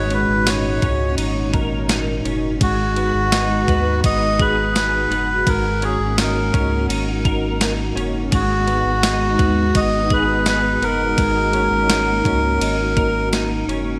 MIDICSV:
0, 0, Header, 1, 6, 480
1, 0, Start_track
1, 0, Tempo, 714286
1, 1753, Time_signature, 4, 2, 24, 8
1, 9403, End_track
2, 0, Start_track
2, 0, Title_t, "Melodica"
2, 0, Program_c, 0, 22
2, 0, Note_on_c, 0, 73, 104
2, 89, Note_off_c, 0, 73, 0
2, 90, Note_on_c, 0, 71, 97
2, 328, Note_on_c, 0, 73, 89
2, 329, Note_off_c, 0, 71, 0
2, 774, Note_off_c, 0, 73, 0
2, 1766, Note_on_c, 0, 66, 106
2, 2693, Note_off_c, 0, 66, 0
2, 2723, Note_on_c, 0, 75, 116
2, 2964, Note_on_c, 0, 71, 92
2, 2965, Note_off_c, 0, 75, 0
2, 3190, Note_off_c, 0, 71, 0
2, 3200, Note_on_c, 0, 71, 99
2, 3684, Note_on_c, 0, 70, 99
2, 3691, Note_off_c, 0, 71, 0
2, 3925, Note_off_c, 0, 70, 0
2, 3929, Note_on_c, 0, 68, 87
2, 4145, Note_off_c, 0, 68, 0
2, 4166, Note_on_c, 0, 70, 89
2, 4613, Note_off_c, 0, 70, 0
2, 5606, Note_on_c, 0, 66, 101
2, 6563, Note_on_c, 0, 75, 111
2, 6588, Note_off_c, 0, 66, 0
2, 6805, Note_off_c, 0, 75, 0
2, 6808, Note_on_c, 0, 71, 92
2, 7038, Note_off_c, 0, 71, 0
2, 7048, Note_on_c, 0, 71, 110
2, 7284, Note_on_c, 0, 70, 113
2, 7288, Note_off_c, 0, 71, 0
2, 8932, Note_off_c, 0, 70, 0
2, 9403, End_track
3, 0, Start_track
3, 0, Title_t, "Clean electric guitar"
3, 0, Program_c, 1, 27
3, 0, Note_on_c, 1, 44, 88
3, 0, Note_on_c, 1, 63, 61
3, 70, Note_on_c, 1, 61, 61
3, 90, Note_off_c, 1, 63, 0
3, 310, Note_on_c, 1, 63, 67
3, 543, Note_off_c, 1, 61, 0
3, 551, Note_on_c, 1, 61, 63
3, 786, Note_off_c, 1, 63, 0
3, 788, Note_on_c, 1, 63, 64
3, 1029, Note_on_c, 1, 70, 67
3, 1265, Note_off_c, 1, 63, 0
3, 1268, Note_on_c, 1, 63, 63
3, 1505, Note_off_c, 1, 61, 0
3, 1513, Note_on_c, 1, 61, 58
3, 1744, Note_off_c, 1, 44, 0
3, 1752, Note_on_c, 1, 44, 84
3, 1799, Note_off_c, 1, 70, 0
3, 1801, Note_off_c, 1, 61, 0
3, 1993, Note_on_c, 1, 59, 65
3, 2232, Note_off_c, 1, 63, 0
3, 2234, Note_on_c, 1, 63, 70
3, 2466, Note_off_c, 1, 59, 0
3, 2474, Note_on_c, 1, 59, 64
3, 2713, Note_off_c, 1, 63, 0
3, 2715, Note_on_c, 1, 63, 68
3, 2955, Note_on_c, 1, 68, 64
3, 3191, Note_off_c, 1, 63, 0
3, 3193, Note_on_c, 1, 63, 59
3, 3424, Note_off_c, 1, 59, 0
3, 3432, Note_on_c, 1, 59, 68
3, 3663, Note_off_c, 1, 44, 0
3, 3671, Note_on_c, 1, 44, 89
3, 3721, Note_off_c, 1, 59, 0
3, 3722, Note_off_c, 1, 68, 0
3, 3915, Note_on_c, 1, 61, 60
3, 3935, Note_off_c, 1, 63, 0
3, 4150, Note_on_c, 1, 63, 62
3, 4382, Note_off_c, 1, 61, 0
3, 4390, Note_on_c, 1, 61, 61
3, 4630, Note_off_c, 1, 63, 0
3, 4632, Note_on_c, 1, 63, 68
3, 4872, Note_on_c, 1, 70, 76
3, 5106, Note_off_c, 1, 63, 0
3, 5108, Note_on_c, 1, 63, 61
3, 5338, Note_off_c, 1, 61, 0
3, 5346, Note_on_c, 1, 61, 71
3, 5578, Note_off_c, 1, 44, 0
3, 5586, Note_on_c, 1, 44, 89
3, 5638, Note_off_c, 1, 61, 0
3, 5641, Note_off_c, 1, 70, 0
3, 5824, Note_on_c, 1, 59, 65
3, 6065, Note_off_c, 1, 63, 0
3, 6067, Note_on_c, 1, 63, 72
3, 6298, Note_off_c, 1, 59, 0
3, 6306, Note_on_c, 1, 59, 65
3, 6546, Note_off_c, 1, 63, 0
3, 6549, Note_on_c, 1, 63, 65
3, 6791, Note_on_c, 1, 68, 68
3, 7026, Note_off_c, 1, 63, 0
3, 7029, Note_on_c, 1, 63, 67
3, 7262, Note_off_c, 1, 59, 0
3, 7270, Note_on_c, 1, 59, 69
3, 7502, Note_off_c, 1, 44, 0
3, 7510, Note_on_c, 1, 44, 89
3, 7560, Note_off_c, 1, 59, 0
3, 7560, Note_off_c, 1, 68, 0
3, 7751, Note_on_c, 1, 61, 66
3, 7771, Note_off_c, 1, 63, 0
3, 7991, Note_on_c, 1, 63, 64
3, 8225, Note_off_c, 1, 61, 0
3, 8233, Note_on_c, 1, 61, 64
3, 8472, Note_off_c, 1, 63, 0
3, 8475, Note_on_c, 1, 63, 66
3, 8713, Note_on_c, 1, 70, 64
3, 8953, Note_off_c, 1, 63, 0
3, 8956, Note_on_c, 1, 63, 63
3, 9189, Note_off_c, 1, 61, 0
3, 9197, Note_on_c, 1, 61, 66
3, 9403, Note_off_c, 1, 44, 0
3, 9403, Note_off_c, 1, 61, 0
3, 9403, Note_off_c, 1, 63, 0
3, 9403, Note_off_c, 1, 70, 0
3, 9403, End_track
4, 0, Start_track
4, 0, Title_t, "String machine"
4, 0, Program_c, 2, 50
4, 0, Note_on_c, 2, 46, 86
4, 0, Note_on_c, 2, 63, 77
4, 0, Note_on_c, 2, 66, 76
4, 1727, Note_off_c, 2, 66, 0
4, 1735, Note_off_c, 2, 46, 0
4, 1755, Note_on_c, 2, 56, 85
4, 1755, Note_on_c, 2, 82, 81
4, 1757, Note_on_c, 2, 71, 98
4, 1758, Note_on_c, 2, 66, 77
4, 3655, Note_off_c, 2, 56, 0
4, 3655, Note_off_c, 2, 82, 0
4, 3656, Note_off_c, 2, 71, 0
4, 3678, Note_on_c, 2, 58, 81
4, 5565, Note_off_c, 2, 63, 0
4, 5569, Note_off_c, 2, 66, 0
4, 5576, Note_off_c, 2, 58, 0
4, 5593, Note_on_c, 2, 66, 74
4, 5594, Note_on_c, 2, 82, 80
4, 5595, Note_on_c, 2, 56, 81
4, 5595, Note_on_c, 2, 63, 81
4, 5596, Note_on_c, 2, 59, 91
4, 7495, Note_off_c, 2, 56, 0
4, 7495, Note_off_c, 2, 82, 0
4, 7496, Note_off_c, 2, 59, 0
4, 7515, Note_on_c, 2, 58, 88
4, 9403, Note_off_c, 2, 58, 0
4, 9403, Note_off_c, 2, 63, 0
4, 9403, Note_off_c, 2, 66, 0
4, 9403, End_track
5, 0, Start_track
5, 0, Title_t, "Analog synth bass"
5, 0, Program_c, 3, 38
5, 0, Note_on_c, 3, 32, 108
5, 175, Note_off_c, 3, 32, 0
5, 196, Note_on_c, 3, 32, 97
5, 537, Note_off_c, 3, 32, 0
5, 554, Note_on_c, 3, 37, 96
5, 782, Note_off_c, 3, 37, 0
5, 792, Note_on_c, 3, 32, 98
5, 1486, Note_off_c, 3, 32, 0
5, 1513, Note_on_c, 3, 30, 101
5, 1741, Note_off_c, 3, 30, 0
5, 1753, Note_on_c, 3, 32, 110
5, 2095, Note_off_c, 3, 32, 0
5, 2113, Note_on_c, 3, 32, 102
5, 2455, Note_off_c, 3, 32, 0
5, 2473, Note_on_c, 3, 39, 93
5, 2701, Note_off_c, 3, 39, 0
5, 2715, Note_on_c, 3, 32, 113
5, 3407, Note_off_c, 3, 32, 0
5, 3429, Note_on_c, 3, 30, 83
5, 3659, Note_off_c, 3, 30, 0
5, 3673, Note_on_c, 3, 32, 112
5, 4015, Note_off_c, 3, 32, 0
5, 4031, Note_on_c, 3, 32, 97
5, 4374, Note_off_c, 3, 32, 0
5, 4395, Note_on_c, 3, 37, 104
5, 4622, Note_off_c, 3, 37, 0
5, 4630, Note_on_c, 3, 32, 110
5, 5325, Note_off_c, 3, 32, 0
5, 5351, Note_on_c, 3, 30, 96
5, 5580, Note_off_c, 3, 30, 0
5, 5593, Note_on_c, 3, 32, 111
5, 5935, Note_off_c, 3, 32, 0
5, 5953, Note_on_c, 3, 32, 106
5, 6295, Note_off_c, 3, 32, 0
5, 6312, Note_on_c, 3, 39, 86
5, 6541, Note_off_c, 3, 39, 0
5, 6554, Note_on_c, 3, 32, 111
5, 7247, Note_off_c, 3, 32, 0
5, 7271, Note_on_c, 3, 30, 93
5, 7500, Note_off_c, 3, 30, 0
5, 7512, Note_on_c, 3, 32, 111
5, 7854, Note_off_c, 3, 32, 0
5, 7874, Note_on_c, 3, 32, 100
5, 8216, Note_off_c, 3, 32, 0
5, 8235, Note_on_c, 3, 37, 104
5, 8462, Note_off_c, 3, 37, 0
5, 8473, Note_on_c, 3, 32, 108
5, 9166, Note_off_c, 3, 32, 0
5, 9192, Note_on_c, 3, 30, 94
5, 9403, Note_off_c, 3, 30, 0
5, 9403, End_track
6, 0, Start_track
6, 0, Title_t, "Drums"
6, 70, Note_on_c, 9, 51, 42
6, 137, Note_off_c, 9, 51, 0
6, 313, Note_on_c, 9, 54, 70
6, 314, Note_on_c, 9, 38, 108
6, 314, Note_on_c, 9, 51, 66
6, 380, Note_off_c, 9, 54, 0
6, 381, Note_off_c, 9, 38, 0
6, 382, Note_off_c, 9, 51, 0
6, 553, Note_on_c, 9, 36, 90
6, 556, Note_on_c, 9, 51, 39
6, 621, Note_off_c, 9, 36, 0
6, 624, Note_off_c, 9, 51, 0
6, 792, Note_on_c, 9, 51, 68
6, 860, Note_off_c, 9, 51, 0
6, 1032, Note_on_c, 9, 36, 94
6, 1033, Note_on_c, 9, 51, 38
6, 1099, Note_off_c, 9, 36, 0
6, 1100, Note_off_c, 9, 51, 0
6, 1270, Note_on_c, 9, 54, 63
6, 1273, Note_on_c, 9, 38, 112
6, 1273, Note_on_c, 9, 51, 50
6, 1337, Note_off_c, 9, 54, 0
6, 1340, Note_off_c, 9, 38, 0
6, 1340, Note_off_c, 9, 51, 0
6, 1515, Note_on_c, 9, 51, 49
6, 1582, Note_off_c, 9, 51, 0
6, 1753, Note_on_c, 9, 51, 68
6, 1754, Note_on_c, 9, 36, 117
6, 1820, Note_off_c, 9, 51, 0
6, 1821, Note_off_c, 9, 36, 0
6, 1992, Note_on_c, 9, 51, 45
6, 2059, Note_off_c, 9, 51, 0
6, 2232, Note_on_c, 9, 54, 67
6, 2233, Note_on_c, 9, 38, 110
6, 2233, Note_on_c, 9, 51, 65
6, 2299, Note_off_c, 9, 54, 0
6, 2300, Note_off_c, 9, 38, 0
6, 2300, Note_off_c, 9, 51, 0
6, 2474, Note_on_c, 9, 36, 90
6, 2479, Note_on_c, 9, 51, 43
6, 2541, Note_off_c, 9, 36, 0
6, 2546, Note_off_c, 9, 51, 0
6, 2714, Note_on_c, 9, 51, 73
6, 2716, Note_on_c, 9, 36, 117
6, 2781, Note_off_c, 9, 51, 0
6, 2783, Note_off_c, 9, 36, 0
6, 2954, Note_on_c, 9, 36, 96
6, 2954, Note_on_c, 9, 51, 39
6, 3021, Note_off_c, 9, 36, 0
6, 3021, Note_off_c, 9, 51, 0
6, 3195, Note_on_c, 9, 54, 64
6, 3198, Note_on_c, 9, 38, 107
6, 3198, Note_on_c, 9, 51, 55
6, 3262, Note_off_c, 9, 54, 0
6, 3265, Note_off_c, 9, 38, 0
6, 3265, Note_off_c, 9, 51, 0
6, 3438, Note_on_c, 9, 51, 47
6, 3505, Note_off_c, 9, 51, 0
6, 3674, Note_on_c, 9, 36, 117
6, 3676, Note_on_c, 9, 51, 65
6, 3742, Note_off_c, 9, 36, 0
6, 3743, Note_off_c, 9, 51, 0
6, 3913, Note_on_c, 9, 51, 46
6, 3980, Note_off_c, 9, 51, 0
6, 4152, Note_on_c, 9, 54, 66
6, 4154, Note_on_c, 9, 38, 104
6, 4154, Note_on_c, 9, 51, 63
6, 4220, Note_off_c, 9, 54, 0
6, 4221, Note_off_c, 9, 38, 0
6, 4221, Note_off_c, 9, 51, 0
6, 4395, Note_on_c, 9, 36, 96
6, 4399, Note_on_c, 9, 51, 41
6, 4462, Note_off_c, 9, 36, 0
6, 4467, Note_off_c, 9, 51, 0
6, 4638, Note_on_c, 9, 51, 74
6, 4705, Note_off_c, 9, 51, 0
6, 4873, Note_on_c, 9, 36, 93
6, 4876, Note_on_c, 9, 51, 41
6, 4940, Note_off_c, 9, 36, 0
6, 4943, Note_off_c, 9, 51, 0
6, 5112, Note_on_c, 9, 54, 66
6, 5114, Note_on_c, 9, 51, 58
6, 5115, Note_on_c, 9, 38, 113
6, 5179, Note_off_c, 9, 54, 0
6, 5182, Note_off_c, 9, 38, 0
6, 5182, Note_off_c, 9, 51, 0
6, 5358, Note_on_c, 9, 51, 48
6, 5425, Note_off_c, 9, 51, 0
6, 5592, Note_on_c, 9, 51, 67
6, 5593, Note_on_c, 9, 36, 109
6, 5659, Note_off_c, 9, 51, 0
6, 5660, Note_off_c, 9, 36, 0
6, 5830, Note_on_c, 9, 51, 42
6, 5897, Note_off_c, 9, 51, 0
6, 6069, Note_on_c, 9, 54, 65
6, 6070, Note_on_c, 9, 38, 115
6, 6071, Note_on_c, 9, 51, 63
6, 6136, Note_off_c, 9, 54, 0
6, 6138, Note_off_c, 9, 38, 0
6, 6138, Note_off_c, 9, 51, 0
6, 6312, Note_on_c, 9, 36, 93
6, 6314, Note_on_c, 9, 51, 40
6, 6379, Note_off_c, 9, 36, 0
6, 6382, Note_off_c, 9, 51, 0
6, 6551, Note_on_c, 9, 51, 71
6, 6552, Note_on_c, 9, 36, 114
6, 6618, Note_off_c, 9, 51, 0
6, 6620, Note_off_c, 9, 36, 0
6, 6790, Note_on_c, 9, 36, 99
6, 6790, Note_on_c, 9, 51, 38
6, 6857, Note_off_c, 9, 36, 0
6, 6857, Note_off_c, 9, 51, 0
6, 7028, Note_on_c, 9, 54, 62
6, 7030, Note_on_c, 9, 51, 53
6, 7031, Note_on_c, 9, 38, 104
6, 7095, Note_off_c, 9, 54, 0
6, 7097, Note_off_c, 9, 51, 0
6, 7098, Note_off_c, 9, 38, 0
6, 7275, Note_on_c, 9, 51, 46
6, 7342, Note_off_c, 9, 51, 0
6, 7512, Note_on_c, 9, 36, 107
6, 7513, Note_on_c, 9, 51, 64
6, 7579, Note_off_c, 9, 36, 0
6, 7580, Note_off_c, 9, 51, 0
6, 7750, Note_on_c, 9, 51, 42
6, 7818, Note_off_c, 9, 51, 0
6, 7993, Note_on_c, 9, 54, 64
6, 7994, Note_on_c, 9, 38, 113
6, 7994, Note_on_c, 9, 51, 63
6, 8060, Note_off_c, 9, 54, 0
6, 8061, Note_off_c, 9, 38, 0
6, 8062, Note_off_c, 9, 51, 0
6, 8234, Note_on_c, 9, 36, 90
6, 8239, Note_on_c, 9, 51, 44
6, 8301, Note_off_c, 9, 36, 0
6, 8306, Note_off_c, 9, 51, 0
6, 8477, Note_on_c, 9, 51, 77
6, 8544, Note_off_c, 9, 51, 0
6, 8714, Note_on_c, 9, 36, 92
6, 8716, Note_on_c, 9, 51, 41
6, 8781, Note_off_c, 9, 36, 0
6, 8783, Note_off_c, 9, 51, 0
6, 8955, Note_on_c, 9, 54, 66
6, 8958, Note_on_c, 9, 38, 102
6, 8958, Note_on_c, 9, 51, 57
6, 9022, Note_off_c, 9, 54, 0
6, 9025, Note_off_c, 9, 38, 0
6, 9025, Note_off_c, 9, 51, 0
6, 9202, Note_on_c, 9, 51, 45
6, 9269, Note_off_c, 9, 51, 0
6, 9403, End_track
0, 0, End_of_file